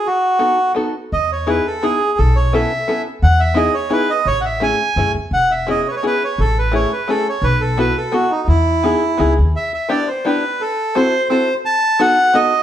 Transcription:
X:1
M:3/4
L:1/16
Q:1/4=172
K:E
V:1 name="Bandoneon"
F8 z4 | d2 c2 B2 A2 G4 | A2 c2 e6 z2 | f2 e2 d2 c2 B2 d2 |
c3/2 f/2 e2 g6 z2 | f2 e2 d2 c/2 B/2 c B2 c2 | A2 B2 c2 B2 A2 c2 | B2 A2 B2 A2 F2 D2 |
E8- E2 z2 | [K:Em] e2 e2 d2 c2 B4 | A4 c4 c3 z | a4 f4 ^d4 |]
V:2 name="Five-string banjo"
z4 [B,DFA]2 z2 [B,DFA]2 z2 | z4 [B,DEG]2 z2 [B,DEG]2 z2 | z4 [B,CEA]2 z2 [B,CEA]2 z2 | z4 [B,DEG]2 z2 [B,DEG]2 z2 |
z4 [A,CEG]2 z2 [A,CEG]2 z2 | z4 [B,CEG]2 z2 [B,CEG]2 z2 | z4 [A,CEG]2 z2 [A,CEG]2 z2 | z4 [B,EFA]2 z2 [B,EFA]2 z2 |
z4 [B,DEG]2 z2 [B,DEG]2 z2 | [K:Em] z4 [B,DEG]2 z2 [B,DEG]2 z2 | z4 [CEFA]2 z2 [CEFA]2 z2 | z4 [B,^DFA]2 z2 [B,DFA]2 z2 |]
V:3 name="Upright bass" clef=bass
z12 | E,,8 z4 | B,,,8 z4 | E,,8 z4 |
A,,,8 F,,2 E,,2 | E,,,8 z4 | A,,,8 z4 | B,,,8 z4 |
E,,8 C,,2 D,,2 | [K:Em] z12 | z12 | z12 |]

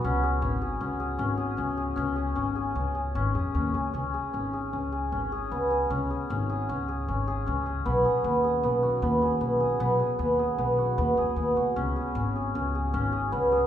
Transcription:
X:1
M:5/4
L:1/8
Q:1/4=154
K:C#dor
V:1 name="Hammered dulcimer"
C G C G C G C G C G | C G C G C G C G C G | C G C G C G C G B, G | C G C G C G C G C G |
B, G B, G B, F B, G B, G | B, G B, G B, F B, G B, F | C G C G C G C G B, G |]
V:2 name="Upright bass" clef=bass
C,,2 G,,,2 C,,2 G,,,2 C,,2 | C,,2 G,,,2 C,,2 G,,, ^E,, D,, C,, | C,, z G,,,2 C,,2 G,,,2 C,,2 | C,, z G,,,2 C,,2 G,,,2 C,,2 |
B,,, z D,,2 B,,,2 D,,2 B,,,2 | B,,, z D,,2 B,,,2 D,, ^E,, D,, C,, | C,, z G,,,2 C,,2 G,,,2 C,,2 |]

